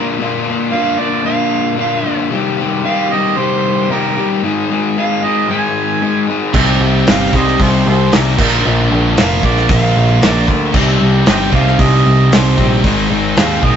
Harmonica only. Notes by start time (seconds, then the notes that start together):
0.72 F5
0.99 D5
1.25 F5
1.80 F5
2.85 F5
3.12 D#5
3.38 C5
3.91 D#4 G4 A#4
4.99 F5
5.24 D#5
5.51 G#5
7.10 F5
7.36 G#4 C5 D#5
7.62 F4 G#4 C5
7.88 F4 G#4 C5
8.14 A#4
9.20 A#4 D5 F5
9.46 D5
9.72 F5
10.24 D5
11.29 C5 D#5 G5
11.54 A#4 D5 F5
11.80 D#5
12.33 C5
13.38 A#4 D5 F5
13.64 D#5